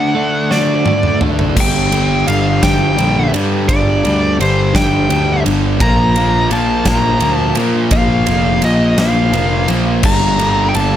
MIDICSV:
0, 0, Header, 1, 6, 480
1, 0, Start_track
1, 0, Key_signature, -2, "minor"
1, 0, Tempo, 706714
1, 1064, Time_signature, 6, 3, 24, 8
1, 7447, End_track
2, 0, Start_track
2, 0, Title_t, "Lead electric guitar"
2, 0, Program_c, 0, 29
2, 0, Note_on_c, 0, 78, 88
2, 349, Note_on_c, 0, 74, 110
2, 559, Note_off_c, 0, 78, 0
2, 799, Note_off_c, 0, 74, 0
2, 1090, Note_on_c, 0, 79, 103
2, 1543, Note_off_c, 0, 79, 0
2, 1546, Note_on_c, 0, 77, 96
2, 1768, Note_off_c, 0, 77, 0
2, 1790, Note_on_c, 0, 79, 90
2, 2239, Note_off_c, 0, 79, 0
2, 2504, Note_on_c, 0, 74, 91
2, 2956, Note_off_c, 0, 74, 0
2, 2998, Note_on_c, 0, 72, 84
2, 3214, Note_off_c, 0, 72, 0
2, 3229, Note_on_c, 0, 79, 101
2, 3678, Note_off_c, 0, 79, 0
2, 3949, Note_on_c, 0, 82, 117
2, 4399, Note_off_c, 0, 82, 0
2, 4434, Note_on_c, 0, 81, 97
2, 4669, Note_off_c, 0, 81, 0
2, 4672, Note_on_c, 0, 82, 89
2, 4984, Note_off_c, 0, 82, 0
2, 4984, Note_on_c, 0, 81, 89
2, 5120, Note_off_c, 0, 81, 0
2, 5383, Note_on_c, 0, 77, 116
2, 5836, Note_off_c, 0, 77, 0
2, 5873, Note_on_c, 0, 75, 97
2, 6092, Note_off_c, 0, 75, 0
2, 6118, Note_on_c, 0, 77, 94
2, 6564, Note_off_c, 0, 77, 0
2, 6830, Note_on_c, 0, 82, 103
2, 7258, Note_on_c, 0, 79, 71
2, 7274, Note_off_c, 0, 82, 0
2, 7304, Note_on_c, 0, 81, 100
2, 7305, Note_off_c, 0, 79, 0
2, 7447, Note_off_c, 0, 81, 0
2, 7447, End_track
3, 0, Start_track
3, 0, Title_t, "Clean electric guitar"
3, 0, Program_c, 1, 27
3, 344, Note_on_c, 1, 66, 81
3, 1064, Note_off_c, 1, 66, 0
3, 7447, End_track
4, 0, Start_track
4, 0, Title_t, "Distorted electric guitar"
4, 0, Program_c, 2, 30
4, 0, Note_on_c, 2, 50, 81
4, 0, Note_on_c, 2, 57, 93
4, 0, Note_on_c, 2, 62, 90
4, 95, Note_off_c, 2, 50, 0
4, 100, Note_off_c, 2, 57, 0
4, 103, Note_off_c, 2, 62, 0
4, 103, Note_on_c, 2, 50, 75
4, 109, Note_on_c, 2, 57, 78
4, 111, Note_on_c, 2, 62, 88
4, 340, Note_off_c, 2, 50, 0
4, 341, Note_off_c, 2, 57, 0
4, 347, Note_off_c, 2, 62, 0
4, 348, Note_on_c, 2, 50, 74
4, 349, Note_on_c, 2, 57, 82
4, 356, Note_on_c, 2, 62, 89
4, 577, Note_off_c, 2, 50, 0
4, 584, Note_off_c, 2, 57, 0
4, 585, Note_on_c, 2, 50, 90
4, 586, Note_off_c, 2, 62, 0
4, 592, Note_on_c, 2, 57, 83
4, 594, Note_on_c, 2, 62, 89
4, 813, Note_off_c, 2, 50, 0
4, 821, Note_off_c, 2, 57, 0
4, 822, Note_on_c, 2, 50, 82
4, 829, Note_off_c, 2, 62, 0
4, 829, Note_on_c, 2, 57, 81
4, 837, Note_on_c, 2, 62, 90
4, 1049, Note_off_c, 2, 50, 0
4, 1052, Note_off_c, 2, 57, 0
4, 1056, Note_off_c, 2, 62, 0
4, 1064, Note_on_c, 2, 43, 89
4, 1067, Note_on_c, 2, 50, 97
4, 1069, Note_on_c, 2, 55, 99
4, 1298, Note_off_c, 2, 43, 0
4, 1299, Note_off_c, 2, 50, 0
4, 1301, Note_on_c, 2, 43, 82
4, 1307, Note_on_c, 2, 50, 88
4, 1310, Note_off_c, 2, 55, 0
4, 1313, Note_on_c, 2, 55, 86
4, 1538, Note_off_c, 2, 43, 0
4, 1538, Note_off_c, 2, 50, 0
4, 1540, Note_on_c, 2, 43, 72
4, 1545, Note_off_c, 2, 55, 0
4, 1546, Note_on_c, 2, 50, 83
4, 1548, Note_on_c, 2, 55, 82
4, 1767, Note_off_c, 2, 43, 0
4, 1775, Note_on_c, 2, 43, 82
4, 1776, Note_off_c, 2, 50, 0
4, 1781, Note_off_c, 2, 55, 0
4, 1784, Note_on_c, 2, 50, 87
4, 1789, Note_on_c, 2, 55, 96
4, 2009, Note_off_c, 2, 43, 0
4, 2014, Note_off_c, 2, 50, 0
4, 2017, Note_on_c, 2, 43, 79
4, 2018, Note_off_c, 2, 55, 0
4, 2023, Note_on_c, 2, 50, 87
4, 2026, Note_on_c, 2, 55, 89
4, 2249, Note_off_c, 2, 43, 0
4, 2252, Note_off_c, 2, 50, 0
4, 2257, Note_on_c, 2, 43, 78
4, 2258, Note_off_c, 2, 55, 0
4, 2260, Note_on_c, 2, 50, 81
4, 2266, Note_on_c, 2, 55, 88
4, 2493, Note_off_c, 2, 43, 0
4, 2500, Note_off_c, 2, 50, 0
4, 2501, Note_on_c, 2, 43, 99
4, 2505, Note_off_c, 2, 55, 0
4, 2508, Note_on_c, 2, 50, 99
4, 2514, Note_on_c, 2, 55, 101
4, 2737, Note_off_c, 2, 43, 0
4, 2743, Note_off_c, 2, 50, 0
4, 2746, Note_on_c, 2, 43, 92
4, 2747, Note_off_c, 2, 55, 0
4, 2751, Note_on_c, 2, 50, 90
4, 2755, Note_on_c, 2, 55, 93
4, 2976, Note_off_c, 2, 43, 0
4, 2980, Note_off_c, 2, 50, 0
4, 2984, Note_on_c, 2, 43, 78
4, 2985, Note_off_c, 2, 55, 0
4, 2988, Note_on_c, 2, 50, 82
4, 2993, Note_on_c, 2, 55, 90
4, 3213, Note_off_c, 2, 43, 0
4, 3218, Note_off_c, 2, 50, 0
4, 3222, Note_on_c, 2, 43, 81
4, 3225, Note_off_c, 2, 55, 0
4, 3226, Note_on_c, 2, 50, 86
4, 3233, Note_on_c, 2, 55, 87
4, 3458, Note_off_c, 2, 43, 0
4, 3461, Note_off_c, 2, 50, 0
4, 3466, Note_off_c, 2, 55, 0
4, 3466, Note_on_c, 2, 43, 92
4, 3469, Note_on_c, 2, 50, 88
4, 3474, Note_on_c, 2, 55, 96
4, 3693, Note_off_c, 2, 43, 0
4, 3701, Note_off_c, 2, 50, 0
4, 3701, Note_off_c, 2, 55, 0
4, 3701, Note_on_c, 2, 43, 79
4, 3709, Note_on_c, 2, 50, 82
4, 3709, Note_on_c, 2, 55, 93
4, 3928, Note_off_c, 2, 43, 0
4, 3931, Note_off_c, 2, 50, 0
4, 3932, Note_off_c, 2, 55, 0
4, 3946, Note_on_c, 2, 46, 91
4, 3953, Note_on_c, 2, 53, 106
4, 3956, Note_on_c, 2, 58, 107
4, 4185, Note_off_c, 2, 46, 0
4, 4188, Note_on_c, 2, 46, 81
4, 4193, Note_off_c, 2, 53, 0
4, 4193, Note_off_c, 2, 58, 0
4, 4195, Note_on_c, 2, 58, 92
4, 4196, Note_on_c, 2, 53, 89
4, 4423, Note_off_c, 2, 46, 0
4, 4425, Note_on_c, 2, 46, 77
4, 4428, Note_off_c, 2, 53, 0
4, 4431, Note_on_c, 2, 53, 93
4, 4432, Note_off_c, 2, 58, 0
4, 4435, Note_on_c, 2, 58, 86
4, 4653, Note_off_c, 2, 46, 0
4, 4657, Note_off_c, 2, 53, 0
4, 4661, Note_on_c, 2, 46, 84
4, 4666, Note_on_c, 2, 53, 90
4, 4667, Note_off_c, 2, 58, 0
4, 4670, Note_on_c, 2, 58, 90
4, 4894, Note_off_c, 2, 46, 0
4, 4901, Note_off_c, 2, 53, 0
4, 4902, Note_on_c, 2, 46, 76
4, 4909, Note_on_c, 2, 53, 91
4, 4913, Note_off_c, 2, 58, 0
4, 4916, Note_on_c, 2, 58, 90
4, 5130, Note_off_c, 2, 46, 0
4, 5135, Note_off_c, 2, 53, 0
4, 5138, Note_on_c, 2, 46, 75
4, 5143, Note_on_c, 2, 53, 77
4, 5145, Note_off_c, 2, 58, 0
4, 5148, Note_on_c, 2, 58, 81
4, 5373, Note_off_c, 2, 46, 0
4, 5378, Note_off_c, 2, 53, 0
4, 5381, Note_on_c, 2, 46, 97
4, 5386, Note_on_c, 2, 53, 97
4, 5389, Note_off_c, 2, 58, 0
4, 5392, Note_on_c, 2, 58, 96
4, 5611, Note_off_c, 2, 46, 0
4, 5618, Note_off_c, 2, 53, 0
4, 5619, Note_on_c, 2, 46, 88
4, 5625, Note_off_c, 2, 58, 0
4, 5626, Note_on_c, 2, 53, 94
4, 5627, Note_on_c, 2, 58, 95
4, 5852, Note_off_c, 2, 46, 0
4, 5859, Note_off_c, 2, 53, 0
4, 5860, Note_on_c, 2, 46, 78
4, 5867, Note_off_c, 2, 58, 0
4, 5867, Note_on_c, 2, 53, 85
4, 5869, Note_on_c, 2, 58, 90
4, 6088, Note_off_c, 2, 46, 0
4, 6095, Note_off_c, 2, 53, 0
4, 6096, Note_on_c, 2, 46, 82
4, 6102, Note_off_c, 2, 58, 0
4, 6103, Note_on_c, 2, 53, 90
4, 6104, Note_on_c, 2, 58, 83
4, 6327, Note_off_c, 2, 46, 0
4, 6330, Note_off_c, 2, 53, 0
4, 6335, Note_on_c, 2, 46, 78
4, 6338, Note_on_c, 2, 53, 94
4, 6340, Note_off_c, 2, 58, 0
4, 6343, Note_on_c, 2, 58, 97
4, 6569, Note_off_c, 2, 46, 0
4, 6571, Note_off_c, 2, 53, 0
4, 6577, Note_on_c, 2, 46, 77
4, 6579, Note_on_c, 2, 53, 88
4, 6581, Note_off_c, 2, 58, 0
4, 6583, Note_on_c, 2, 58, 86
4, 6806, Note_off_c, 2, 46, 0
4, 6808, Note_off_c, 2, 53, 0
4, 6810, Note_on_c, 2, 43, 93
4, 6812, Note_on_c, 2, 50, 91
4, 6819, Note_on_c, 2, 55, 93
4, 7051, Note_off_c, 2, 43, 0
4, 7051, Note_off_c, 2, 50, 0
4, 7053, Note_on_c, 2, 43, 85
4, 7058, Note_off_c, 2, 55, 0
4, 7059, Note_on_c, 2, 50, 87
4, 7061, Note_on_c, 2, 55, 90
4, 7291, Note_off_c, 2, 43, 0
4, 7291, Note_off_c, 2, 50, 0
4, 7294, Note_on_c, 2, 43, 77
4, 7299, Note_on_c, 2, 50, 85
4, 7302, Note_off_c, 2, 55, 0
4, 7305, Note_on_c, 2, 55, 92
4, 7447, Note_off_c, 2, 43, 0
4, 7447, Note_off_c, 2, 50, 0
4, 7447, Note_off_c, 2, 55, 0
4, 7447, Note_off_c, 2, 58, 0
4, 7447, End_track
5, 0, Start_track
5, 0, Title_t, "Picked electric bass"
5, 0, Program_c, 3, 34
5, 1063, Note_on_c, 3, 31, 94
5, 1516, Note_off_c, 3, 31, 0
5, 1547, Note_on_c, 3, 31, 90
5, 1768, Note_off_c, 3, 31, 0
5, 1786, Note_on_c, 3, 31, 94
5, 2008, Note_off_c, 3, 31, 0
5, 2033, Note_on_c, 3, 34, 89
5, 2251, Note_off_c, 3, 34, 0
5, 2274, Note_on_c, 3, 43, 93
5, 2492, Note_off_c, 3, 43, 0
5, 2505, Note_on_c, 3, 31, 98
5, 2727, Note_off_c, 3, 31, 0
5, 2755, Note_on_c, 3, 38, 87
5, 2972, Note_off_c, 3, 38, 0
5, 2989, Note_on_c, 3, 31, 92
5, 3209, Note_off_c, 3, 31, 0
5, 3226, Note_on_c, 3, 31, 88
5, 3447, Note_off_c, 3, 31, 0
5, 3471, Note_on_c, 3, 38, 91
5, 3690, Note_off_c, 3, 38, 0
5, 3710, Note_on_c, 3, 31, 94
5, 3945, Note_off_c, 3, 31, 0
5, 3945, Note_on_c, 3, 34, 96
5, 4396, Note_off_c, 3, 34, 0
5, 4423, Note_on_c, 3, 34, 88
5, 4646, Note_off_c, 3, 34, 0
5, 4657, Note_on_c, 3, 34, 90
5, 4883, Note_off_c, 3, 34, 0
5, 4898, Note_on_c, 3, 38, 89
5, 5123, Note_off_c, 3, 38, 0
5, 5137, Note_on_c, 3, 46, 87
5, 5362, Note_off_c, 3, 46, 0
5, 5376, Note_on_c, 3, 34, 97
5, 5602, Note_off_c, 3, 34, 0
5, 5620, Note_on_c, 3, 29, 93
5, 5844, Note_off_c, 3, 29, 0
5, 5858, Note_on_c, 3, 34, 90
5, 6083, Note_off_c, 3, 34, 0
5, 6096, Note_on_c, 3, 34, 88
5, 6323, Note_off_c, 3, 34, 0
5, 6332, Note_on_c, 3, 29, 86
5, 6561, Note_off_c, 3, 29, 0
5, 6577, Note_on_c, 3, 34, 87
5, 6803, Note_off_c, 3, 34, 0
5, 6818, Note_on_c, 3, 31, 95
5, 7275, Note_off_c, 3, 31, 0
5, 7303, Note_on_c, 3, 31, 88
5, 7447, Note_off_c, 3, 31, 0
5, 7447, End_track
6, 0, Start_track
6, 0, Title_t, "Drums"
6, 346, Note_on_c, 9, 38, 57
6, 414, Note_off_c, 9, 38, 0
6, 581, Note_on_c, 9, 48, 76
6, 649, Note_off_c, 9, 48, 0
6, 701, Note_on_c, 9, 47, 74
6, 769, Note_off_c, 9, 47, 0
6, 821, Note_on_c, 9, 45, 94
6, 889, Note_off_c, 9, 45, 0
6, 943, Note_on_c, 9, 43, 82
6, 1011, Note_off_c, 9, 43, 0
6, 1064, Note_on_c, 9, 36, 108
6, 1064, Note_on_c, 9, 49, 125
6, 1132, Note_off_c, 9, 36, 0
6, 1132, Note_off_c, 9, 49, 0
6, 1305, Note_on_c, 9, 51, 74
6, 1373, Note_off_c, 9, 51, 0
6, 1547, Note_on_c, 9, 51, 79
6, 1615, Note_off_c, 9, 51, 0
6, 1785, Note_on_c, 9, 36, 75
6, 1785, Note_on_c, 9, 38, 115
6, 1785, Note_on_c, 9, 51, 103
6, 1853, Note_off_c, 9, 36, 0
6, 1853, Note_off_c, 9, 38, 0
6, 1853, Note_off_c, 9, 51, 0
6, 2027, Note_on_c, 9, 51, 74
6, 2095, Note_off_c, 9, 51, 0
6, 2268, Note_on_c, 9, 51, 76
6, 2336, Note_off_c, 9, 51, 0
6, 2505, Note_on_c, 9, 36, 115
6, 2506, Note_on_c, 9, 51, 103
6, 2573, Note_off_c, 9, 36, 0
6, 2574, Note_off_c, 9, 51, 0
6, 2749, Note_on_c, 9, 51, 70
6, 2817, Note_off_c, 9, 51, 0
6, 2992, Note_on_c, 9, 51, 72
6, 3060, Note_off_c, 9, 51, 0
6, 3225, Note_on_c, 9, 36, 80
6, 3231, Note_on_c, 9, 38, 107
6, 3231, Note_on_c, 9, 51, 89
6, 3293, Note_off_c, 9, 36, 0
6, 3299, Note_off_c, 9, 38, 0
6, 3299, Note_off_c, 9, 51, 0
6, 3466, Note_on_c, 9, 51, 73
6, 3534, Note_off_c, 9, 51, 0
6, 3708, Note_on_c, 9, 51, 72
6, 3776, Note_off_c, 9, 51, 0
6, 3942, Note_on_c, 9, 36, 119
6, 3944, Note_on_c, 9, 51, 94
6, 4010, Note_off_c, 9, 36, 0
6, 4012, Note_off_c, 9, 51, 0
6, 4181, Note_on_c, 9, 51, 72
6, 4249, Note_off_c, 9, 51, 0
6, 4420, Note_on_c, 9, 51, 73
6, 4488, Note_off_c, 9, 51, 0
6, 4656, Note_on_c, 9, 38, 107
6, 4656, Note_on_c, 9, 51, 97
6, 4657, Note_on_c, 9, 36, 78
6, 4724, Note_off_c, 9, 38, 0
6, 4724, Note_off_c, 9, 51, 0
6, 4725, Note_off_c, 9, 36, 0
6, 4893, Note_on_c, 9, 51, 78
6, 4960, Note_off_c, 9, 51, 0
6, 5129, Note_on_c, 9, 51, 77
6, 5197, Note_off_c, 9, 51, 0
6, 5371, Note_on_c, 9, 51, 106
6, 5375, Note_on_c, 9, 36, 110
6, 5439, Note_off_c, 9, 51, 0
6, 5443, Note_off_c, 9, 36, 0
6, 5614, Note_on_c, 9, 51, 73
6, 5682, Note_off_c, 9, 51, 0
6, 5853, Note_on_c, 9, 51, 78
6, 5921, Note_off_c, 9, 51, 0
6, 6098, Note_on_c, 9, 51, 96
6, 6099, Note_on_c, 9, 38, 110
6, 6166, Note_off_c, 9, 51, 0
6, 6167, Note_off_c, 9, 38, 0
6, 6340, Note_on_c, 9, 51, 73
6, 6408, Note_off_c, 9, 51, 0
6, 6576, Note_on_c, 9, 51, 73
6, 6644, Note_off_c, 9, 51, 0
6, 6812, Note_on_c, 9, 49, 102
6, 6817, Note_on_c, 9, 36, 118
6, 6880, Note_off_c, 9, 49, 0
6, 6885, Note_off_c, 9, 36, 0
6, 7059, Note_on_c, 9, 51, 69
6, 7127, Note_off_c, 9, 51, 0
6, 7298, Note_on_c, 9, 51, 72
6, 7366, Note_off_c, 9, 51, 0
6, 7447, End_track
0, 0, End_of_file